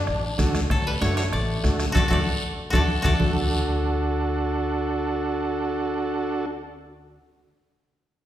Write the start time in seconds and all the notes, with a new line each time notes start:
Already playing: D4 A4 B4 F#5
0.07 A1, bombo rim, high conga, long guiro
0.38 D2 D4 F#4 A4, bombo low, bombo rim, high conga, low conga, short guiro
0.55 bombo rim, high conga, short guiro
0.70 D2 F#3 A4, bombo low, bombo rim, high conga, long guiro
0.87 G3 B4
1.01 F#2 A3 D4 F#4 A4 C#5, bombo rim, high conga, short guiro
1.17 A3 C#5, bombo rim, short guiro
1.33 A1 A3 D5, bombo rim, high conga, long guiro
1.63 D2 D4 F#4 A4, bombo low, bombo rim, high conga, short guiro
1.80 bombo rim, high conga, short guiro
1.92 D2 A3 D4 F#4 A4, bombo low, low conga, long guiro
1.97 D5
2.08 D2 A3 D4 F#4 A4, bombo low, low conga, long guiro
2.13 D5
2.70 D2 A3 D4 F#4 A4, bombo low, low conga, long guiro
2.75 D5
3.02 D2 A3 D4 F#4 A4 D5, bombo low, low conga, long guiro
3.19 D2 D4 F#4 A4, bombo low, low conga, long guiro